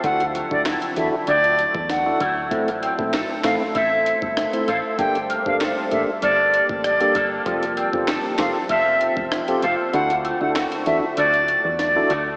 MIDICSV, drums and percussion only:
0, 0, Header, 1, 2, 480
1, 0, Start_track
1, 0, Tempo, 618557
1, 30, Time_signature, 4, 2, 24, 8
1, 9595, End_track
2, 0, Start_track
2, 0, Title_t, "Drums"
2, 29, Note_on_c, 9, 36, 122
2, 29, Note_on_c, 9, 42, 77
2, 107, Note_off_c, 9, 36, 0
2, 107, Note_off_c, 9, 42, 0
2, 157, Note_on_c, 9, 42, 59
2, 235, Note_off_c, 9, 42, 0
2, 271, Note_on_c, 9, 42, 68
2, 349, Note_off_c, 9, 42, 0
2, 397, Note_on_c, 9, 36, 90
2, 474, Note_off_c, 9, 36, 0
2, 509, Note_on_c, 9, 42, 63
2, 510, Note_on_c, 9, 38, 124
2, 510, Note_on_c, 9, 39, 104
2, 586, Note_off_c, 9, 42, 0
2, 587, Note_off_c, 9, 38, 0
2, 587, Note_off_c, 9, 39, 0
2, 636, Note_on_c, 9, 42, 65
2, 714, Note_off_c, 9, 42, 0
2, 748, Note_on_c, 9, 42, 66
2, 826, Note_off_c, 9, 42, 0
2, 986, Note_on_c, 9, 42, 84
2, 1064, Note_off_c, 9, 42, 0
2, 1117, Note_on_c, 9, 42, 47
2, 1195, Note_off_c, 9, 42, 0
2, 1231, Note_on_c, 9, 42, 77
2, 1308, Note_off_c, 9, 42, 0
2, 1355, Note_on_c, 9, 36, 99
2, 1432, Note_off_c, 9, 36, 0
2, 1471, Note_on_c, 9, 38, 72
2, 1473, Note_on_c, 9, 42, 69
2, 1548, Note_off_c, 9, 38, 0
2, 1550, Note_off_c, 9, 42, 0
2, 1710, Note_on_c, 9, 42, 72
2, 1711, Note_on_c, 9, 36, 95
2, 1788, Note_off_c, 9, 42, 0
2, 1789, Note_off_c, 9, 36, 0
2, 1951, Note_on_c, 9, 36, 121
2, 1951, Note_on_c, 9, 42, 78
2, 2028, Note_off_c, 9, 36, 0
2, 2029, Note_off_c, 9, 42, 0
2, 2080, Note_on_c, 9, 42, 57
2, 2158, Note_off_c, 9, 42, 0
2, 2194, Note_on_c, 9, 42, 70
2, 2272, Note_off_c, 9, 42, 0
2, 2318, Note_on_c, 9, 36, 94
2, 2396, Note_off_c, 9, 36, 0
2, 2432, Note_on_c, 9, 42, 63
2, 2433, Note_on_c, 9, 38, 119
2, 2433, Note_on_c, 9, 39, 104
2, 2509, Note_off_c, 9, 42, 0
2, 2510, Note_off_c, 9, 38, 0
2, 2510, Note_off_c, 9, 39, 0
2, 2670, Note_on_c, 9, 38, 116
2, 2670, Note_on_c, 9, 39, 87
2, 2671, Note_on_c, 9, 42, 72
2, 2747, Note_off_c, 9, 39, 0
2, 2748, Note_off_c, 9, 38, 0
2, 2749, Note_off_c, 9, 42, 0
2, 2910, Note_on_c, 9, 36, 90
2, 2910, Note_on_c, 9, 42, 84
2, 2987, Note_off_c, 9, 42, 0
2, 2988, Note_off_c, 9, 36, 0
2, 3152, Note_on_c, 9, 42, 76
2, 3230, Note_off_c, 9, 42, 0
2, 3275, Note_on_c, 9, 36, 103
2, 3353, Note_off_c, 9, 36, 0
2, 3391, Note_on_c, 9, 37, 93
2, 3391, Note_on_c, 9, 38, 68
2, 3393, Note_on_c, 9, 42, 72
2, 3469, Note_off_c, 9, 37, 0
2, 3469, Note_off_c, 9, 38, 0
2, 3471, Note_off_c, 9, 42, 0
2, 3518, Note_on_c, 9, 42, 59
2, 3596, Note_off_c, 9, 42, 0
2, 3631, Note_on_c, 9, 42, 73
2, 3708, Note_off_c, 9, 42, 0
2, 3870, Note_on_c, 9, 36, 120
2, 3870, Note_on_c, 9, 42, 78
2, 3948, Note_off_c, 9, 36, 0
2, 3948, Note_off_c, 9, 42, 0
2, 3998, Note_on_c, 9, 42, 55
2, 4076, Note_off_c, 9, 42, 0
2, 4112, Note_on_c, 9, 42, 69
2, 4189, Note_off_c, 9, 42, 0
2, 4237, Note_on_c, 9, 36, 91
2, 4315, Note_off_c, 9, 36, 0
2, 4350, Note_on_c, 9, 42, 62
2, 4351, Note_on_c, 9, 39, 101
2, 4352, Note_on_c, 9, 38, 117
2, 4428, Note_off_c, 9, 42, 0
2, 4429, Note_off_c, 9, 38, 0
2, 4429, Note_off_c, 9, 39, 0
2, 4589, Note_on_c, 9, 42, 68
2, 4667, Note_off_c, 9, 42, 0
2, 4828, Note_on_c, 9, 42, 83
2, 4906, Note_off_c, 9, 42, 0
2, 5072, Note_on_c, 9, 42, 80
2, 5150, Note_off_c, 9, 42, 0
2, 5195, Note_on_c, 9, 36, 101
2, 5272, Note_off_c, 9, 36, 0
2, 5310, Note_on_c, 9, 37, 95
2, 5312, Note_on_c, 9, 42, 70
2, 5388, Note_off_c, 9, 37, 0
2, 5389, Note_off_c, 9, 42, 0
2, 5436, Note_on_c, 9, 42, 60
2, 5513, Note_off_c, 9, 42, 0
2, 5549, Note_on_c, 9, 42, 74
2, 5550, Note_on_c, 9, 36, 93
2, 5626, Note_off_c, 9, 42, 0
2, 5628, Note_off_c, 9, 36, 0
2, 5789, Note_on_c, 9, 36, 119
2, 5790, Note_on_c, 9, 42, 78
2, 5867, Note_off_c, 9, 36, 0
2, 5867, Note_off_c, 9, 42, 0
2, 5918, Note_on_c, 9, 42, 57
2, 5996, Note_off_c, 9, 42, 0
2, 6030, Note_on_c, 9, 42, 69
2, 6108, Note_off_c, 9, 42, 0
2, 6156, Note_on_c, 9, 36, 95
2, 6234, Note_off_c, 9, 36, 0
2, 6268, Note_on_c, 9, 42, 65
2, 6269, Note_on_c, 9, 38, 126
2, 6269, Note_on_c, 9, 39, 101
2, 6346, Note_off_c, 9, 39, 0
2, 6346, Note_off_c, 9, 42, 0
2, 6347, Note_off_c, 9, 38, 0
2, 6506, Note_on_c, 9, 39, 92
2, 6507, Note_on_c, 9, 38, 112
2, 6508, Note_on_c, 9, 42, 69
2, 6584, Note_off_c, 9, 38, 0
2, 6584, Note_off_c, 9, 39, 0
2, 6585, Note_off_c, 9, 42, 0
2, 6746, Note_on_c, 9, 42, 89
2, 6748, Note_on_c, 9, 36, 95
2, 6823, Note_off_c, 9, 42, 0
2, 6826, Note_off_c, 9, 36, 0
2, 6990, Note_on_c, 9, 42, 79
2, 7068, Note_off_c, 9, 42, 0
2, 7114, Note_on_c, 9, 36, 102
2, 7192, Note_off_c, 9, 36, 0
2, 7230, Note_on_c, 9, 37, 99
2, 7230, Note_on_c, 9, 38, 69
2, 7232, Note_on_c, 9, 42, 72
2, 7307, Note_off_c, 9, 37, 0
2, 7307, Note_off_c, 9, 38, 0
2, 7309, Note_off_c, 9, 42, 0
2, 7356, Note_on_c, 9, 42, 60
2, 7434, Note_off_c, 9, 42, 0
2, 7469, Note_on_c, 9, 42, 73
2, 7546, Note_off_c, 9, 42, 0
2, 7709, Note_on_c, 9, 42, 79
2, 7787, Note_off_c, 9, 42, 0
2, 7838, Note_on_c, 9, 42, 57
2, 7916, Note_off_c, 9, 42, 0
2, 7952, Note_on_c, 9, 42, 68
2, 8030, Note_off_c, 9, 42, 0
2, 8191, Note_on_c, 9, 42, 67
2, 8192, Note_on_c, 9, 39, 103
2, 8193, Note_on_c, 9, 38, 123
2, 8269, Note_off_c, 9, 42, 0
2, 8270, Note_off_c, 9, 38, 0
2, 8270, Note_off_c, 9, 39, 0
2, 8317, Note_on_c, 9, 42, 64
2, 8395, Note_off_c, 9, 42, 0
2, 8428, Note_on_c, 9, 42, 69
2, 8506, Note_off_c, 9, 42, 0
2, 8668, Note_on_c, 9, 42, 84
2, 8746, Note_off_c, 9, 42, 0
2, 8797, Note_on_c, 9, 42, 50
2, 8875, Note_off_c, 9, 42, 0
2, 8911, Note_on_c, 9, 42, 79
2, 8988, Note_off_c, 9, 42, 0
2, 9149, Note_on_c, 9, 38, 69
2, 9151, Note_on_c, 9, 42, 72
2, 9227, Note_off_c, 9, 38, 0
2, 9229, Note_off_c, 9, 42, 0
2, 9390, Note_on_c, 9, 42, 74
2, 9467, Note_off_c, 9, 42, 0
2, 9595, End_track
0, 0, End_of_file